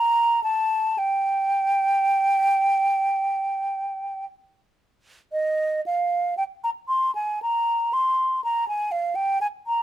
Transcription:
0.00 0.43 A#5 medium
0.44 1.00 A5 medium
0.98 4.25 G5 medium
5.32 5.81 D#5 medium
5.86 6.37 F5 medium
6.37 6.43 G5 medium
6.64 6.70 A#5 medium
6.88 7.13 C6 medium
7.15 7.40 G#5 medium
7.42 7.95 A#5 medium
7.93 8.43 C6 medium
8.44 8.68 A#5 medium
8.68 8.93 G#5 medium
8.92 9.17 F5 medium
9.15 9.40 G5 medium
9.41 9.47 G#5 medium
9.67 9.83 A#5 medium

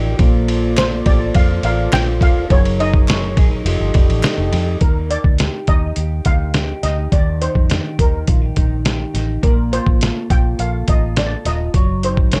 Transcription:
0.00 0.14 A1 loud
0.00 0.19 D#3 medium
0.00 0.25 D#4 medium
0.00 0.14 F4 medium
0.00 0.15 G4 medium
0.00 0.25 G4 medium
0.00 0.16 A#4 medium
0.00 0.17 D5 medium
0.00 0.76 D5 medium
0.16 1.02 A#1 loud
0.16 2.50 A#3 medium
0.16 2.45 F4 medium
0.16 2.46 A4 medium
0.16 2.46 C5 medium
0.16 kick medium
0.16 ride medium
0.21 2.47 D5 medium
0.48 1.34 F4 medium
0.48 ride medium
0.76 1.07 C5 medium
0.76 1.63 D5 medium
0.76 snare loud
0.76 clap medium
0.76 ride medium
1.06 1.29 A1 medium
1.06 1.20 G4 medium
1.06 1.36 D5 loud
1.06 kick medium
1.06 ride medium
1.20 2.21 A4 medium
1.35 1.58 F2 loud
1.35 1.92 F4 medium
1.35 1.64 F5 loud
1.35 kick medium
1.35 ride medium
1.63 1.86 A1 loud
1.63 2.56 D5 medium
1.63 1.94 F5 loud
1.63 ride medium
1.92 2.21 A#1 loud
1.92 2.56 F4 medium
1.92 2.23 G5 loud
1.92 snare loud
1.92 clap medium
1.92 ride medium
2.21 2.44 D#1 loud
2.21 2.56 A4 medium
2.21 2.52 F5 loud
2.21 kick medium
2.21 ride medium
2.48 3.37 F#1 loud
2.48 3.65 F#3 medium
2.48 3.62 D#4 medium
2.48 3.63 G#4 medium
2.48 3.64 A#4 medium
2.48 2.81 C#5 loud
2.48 kick loud
2.48 ride medium
2.53 3.65 C#5 medium
2.65 ride soft
2.80 3.98 D#4 medium
2.80 4.49 D#5 loud
2.80 ride medium
2.94 kick medium
3.08 3.71 C#5 medium
3.08 snare loud
3.08 clap medium
3.08 ride medium
3.37 3.60 A#1 medium
3.37 3.51 G#4 medium
3.37 kick loud
3.37 ride medium
3.51 3.71 A#4 medium
3.64 3.77 F1 loud
3.64 4.87 F3 medium
3.64 4.78 D#4 medium
3.64 4.79 G4 medium
3.64 4.80 A4 medium
3.64 ride medium
3.69 4.81 D#5 medium
3.80 3.92 G1 medium
3.94 4.06 F1 loud
3.94 5.13 D5 medium
3.94 kick medium
3.94 ride medium
4.09 4.21 A1 medium
4.09 ride soft
4.23 5.09 D#4 medium
4.23 snare loud
4.23 clap medium
4.23 ride medium
4.38 4.49 F1 medium
4.52 4.76 F2 loud
4.52 4.67 G4 medium
4.52 snare soft
4.52 ride medium
4.67 4.87 A4 soft
4.81 5.16 D#2 medium
4.81 5.11 A#4 medium
4.81 kick medium
4.81 closed hi-hat medium
5.10 5.67 D#4 soft
5.10 5.70 D5 loud
5.10 closed hi-hat medium
5.24 5.47 D2 medium
5.24 kick medium
5.38 5.96 G4 soft
5.38 snare loud
5.38 closed hi-hat medium
5.67 5.91 D#2 medium
5.67 6.24 D#4 medium
5.67 6.28 D#5 loud
5.67 kick medium
5.67 closed hi-hat medium
5.96 6.20 D#2 medium
5.96 6.53 G4 medium
5.96 closed hi-hat medium
6.25 6.72 D2 medium
6.25 6.82 D#4 medium
6.25 6.85 F5 loud
6.25 kick medium
6.25 closed hi-hat medium
6.54 7.68 G4 medium
6.54 snare loud
6.54 closed hi-hat medium
6.83 7.06 D2 medium
6.83 7.40 D#4 medium
6.83 7.13 D#5 medium
6.83 snare soft
6.83 closed hi-hat medium
7.12 7.47 D#2 medium
7.12 9.43 D#3 medium
7.12 7.42 D5 medium
7.12 9.43 D5 medium
7.12 kick medium
7.12 closed hi-hat medium
7.41 7.97 D#4 medium
7.41 7.95 C5 medium
7.41 closed hi-hat medium
7.55 7.79 F2 medium
7.55 kick medium
7.70 8.27 G4 soft
7.70 snare medium
7.70 closed hi-hat medium
7.99 8.22 D#2 medium
7.99 8.55 D#4 medium
7.99 8.82 A#4 medium
7.99 kick medium
7.99 closed hi-hat medium
8.27 8.51 A#1 medium
8.27 8.42 F4 medium
8.27 kick medium
8.27 closed hi-hat medium
8.42 8.84 G4 soft
8.56 9.03 A#1 medium
8.56 9.13 D#4 medium
8.56 kick medium
8.56 closed hi-hat medium
8.85 9.49 G4 medium
8.85 snare loud
8.85 closed hi-hat medium
9.14 9.37 A1 medium
9.14 9.49 D#4 medium
9.14 snare soft
9.14 closed hi-hat medium
9.43 9.78 A#1 medium
9.43 11.74 A#3 medium
9.43 9.73 A#4 medium
9.43 11.74 D5 medium
9.43 kick medium
9.43 closed hi-hat medium
9.72 10.28 F4 medium
9.72 10.32 C5 loud
9.72 closed hi-hat medium
9.86 10.10 A1 medium
9.86 kick medium
10.01 10.57 A4 medium
10.01 snare medium
10.01 closed hi-hat medium
10.30 10.53 A#1 medium
10.30 10.86 F4 medium
10.30 10.60 G5 loud
10.30 kick medium
10.30 closed hi-hat medium
10.58 10.82 A#1 medium
10.58 11.15 A4 medium
10.58 10.89 F5 medium
10.58 closed hi-hat medium
10.87 11.34 A1 medium
10.87 11.44 F4 medium
10.87 11.18 D#5 medium
10.87 kick medium
10.87 closed hi-hat medium
11.16 11.80 A4 medium
11.16 11.47 D5 medium
11.16 snare loud
11.16 closed hi-hat medium
11.45 11.68 D#1 medium
11.45 11.80 F4 medium
11.45 12.05 D#5 medium
11.45 snare soft
11.45 closed hi-hat medium
11.74 12.17 F#1 medium
11.74 12.40 F#3 medium
11.74 12.40 C#5 medium
11.74 kick medium
11.74 closed hi-hat medium
12.03 12.40 D#4 soft
12.03 12.17 C5 medium
12.03 closed hi-hat medium
12.17 12.40 G#1 medium
12.17 kick medium
12.32 12.40 A#4 medium
12.32 12.40 C#5 medium
12.32 snare loud
12.32 closed hi-hat medium

